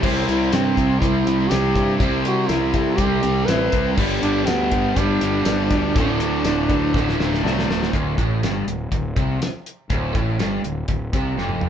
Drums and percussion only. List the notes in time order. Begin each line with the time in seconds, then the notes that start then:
0.03 kick, crash
0.29 closed hi-hat
0.53 snare, closed hi-hat, tambourine
0.77 kick, closed hi-hat
1.02 kick, closed hi-hat
1.27 closed hi-hat
1.51 snare, closed hi-hat, tambourine
1.76 kick, closed hi-hat
2.00 kick, closed hi-hat
2.25 closed hi-hat
2.49 snare, closed hi-hat, tambourine
2.74 kick, closed hi-hat
2.98 kick, closed hi-hat
3.23 closed hi-hat
3.48 snare, closed hi-hat, tambourine
3.72 kick, closed hi-hat
3.97 kick, crash
4.23 closed hi-hat
4.47 snare, closed hi-hat, tambourine
4.72 kick, closed hi-hat
4.96 kick, closed hi-hat
5.21 closed hi-hat
5.45 snare, closed hi-hat, tambourine
5.71 kick, closed hi-hat
5.96 kick, closed hi-hat
6.20 closed hi-hat
6.45 snare, closed hi-hat, tambourine
6.70 kick, closed hi-hat
6.94 kick, snare
7.09 snare
7.20 snare
7.34 snare
7.46 snare
7.59 snare
7.71 snare
7.83 snare
7.93 kick, closed hi-hat
8.18 kick, closed hi-hat
8.43 snare, closed hi-hat, tambourine
8.68 closed hi-hat
8.92 kick, closed hi-hat
9.17 kick, closed hi-hat
9.42 snare, closed hi-hat, tambourine
9.66 closed hi-hat
9.90 kick, closed hi-hat
10.15 kick, closed hi-hat
10.39 snare, closed hi-hat, tambourine
10.64 closed hi-hat
10.88 kick, closed hi-hat
11.13 kick, closed hi-hat
11.38 snare
11.49 mid tom
11.61 mid tom